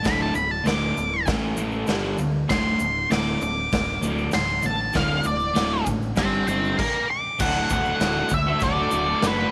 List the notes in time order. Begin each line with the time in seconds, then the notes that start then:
0.03 D1 D2 A2 D3 B5, kick, snare, open hi-hat, shaker
0.22 A5
0.35 D1 D2 A2 B5, shaker
0.51 A5
0.64 D1 D2 A2 D3 D6, snare, open hi-hat, shaker
0.96 D1 D2 A2, shaker
1.26 A1 A2 E3 A3, kick, snare, open hi-hat, shaker
1.56 A1 A2 E3 A3, shaker
1.72 shaker
1.87 G1 G2 D3 G3, snare, open hi-hat, shaker
2.18 D2 G2 D3, shaker
2.48 D1 D2 A2 D3 C6, kick, snare, open hi-hat, shaker
2.80 D1 D2 A2, shaker
3.10 D1 D2 A2 D3 D6, snare, open hi-hat, shaker
3.41 D1 D2 A2 D6, shaker
3.72 D1 D2 A2, kick, snare, open hi-hat, shaker
4.02 D1 D2 A2 D3, shaker
4.18 shaker
4.31 D1 D2 A2 C6, snare, open hi-hat, shaker
4.62 A1 D2 A2 A5, shaker
4.93 D1 D2 A2 D3 F5, kick, snare, open hi-hat, shaker
5.24 D1 D2 A2 D5, shaker
5.40 shaker
5.54 D1 D2 A2 D3, snare, open hi-hat, shaker
5.86 A1 D2 A2, kick, shaker
6.02 shaker
6.16 G1 G2 D3 G3 G5 C6, kick, snare, open hi-hat, shaker
6.47 G1 G2 D3 G3 G5 C6, shaker
6.65 shaker
6.79 F5 D6, kick, crash
7.11 D6
7.39 D1 D2 A2 D3 A3 F#4 F#5, kick, crash, shaker
7.70 D1 A2 D3 A3 F#4 F#5, kick, shaker
7.85 shaker
8.00 D1 D2 A2 D3 A3 F#4, snare, crash, shaker
8.29 D2, muted overdriven electric guitar stroke, kick, shaker
8.34 E5
8.47 A3 F#4
8.51 D3
8.60 D1 D5, kick, crash, shaker
8.75 A3 F#4
8.79 D3
8.91 D1 A2 D3 A3 F#4, shaker
9.06 D3 A3 F#4
9.21 F#1 D2 A2 D3 A3 F#4, snare, crash, shaker
9.27 B4
9.36 D3 A3 F#4